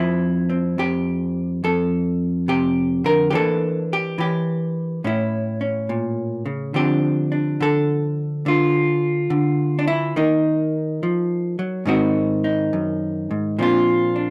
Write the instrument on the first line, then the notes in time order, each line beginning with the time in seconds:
hollow-body jazz guitar
Already playing: F2 F3 C4 E4
0.50 C4
0.78 F2 G4
1.64 F2 A4
2.48 C3 G4
3.04 D3 A#4
3.30 E3 A#3 D4 G4
3.35 A4
3.93 G4
4.18 E3 G4
5.04 A2 C#4 E4
5.61 C#4
5.89 A#2
6.46 C#3
6.74 D3 F3 C4 D4 G4
7.32 D4
7.61 D3 A4
8.46 D3 F4
9.30 D3
9.79 D4
9.88 E4
10.16 D#3 A#3 D#4
11.03 F3
11.59 F#3
11.85 G#2 D#3 C4 D#4 F#4
12.44 D#4
12.73 F#2
13.31 G#2
13.59 A#2 F3 C4 D4 F4
14.16 D4